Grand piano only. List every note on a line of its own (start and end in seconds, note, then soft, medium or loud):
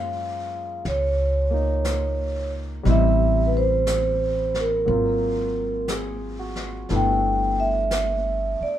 0.00 2.85 G#3 medium
0.00 1.49 A#3 soft
0.00 2.86 C#4 medium
0.00 2.87 F4 medium
1.51 2.85 A#3 soft
1.51 2.87 D#4 medium
2.83 4.87 G3 medium
2.83 4.86 C4 medium
2.88 4.89 E4 medium
4.85 6.89 F#3 soft
4.85 6.89 A#3 soft
4.85 6.90 C4 soft
4.90 6.91 F4 medium
5.90 6.70 G#4 soft
6.39 7.11 F#4 soft
6.90 8.79 A3 medium
6.90 8.79 B3 soft
6.90 8.79 D4 medium
6.90 8.79 E4 medium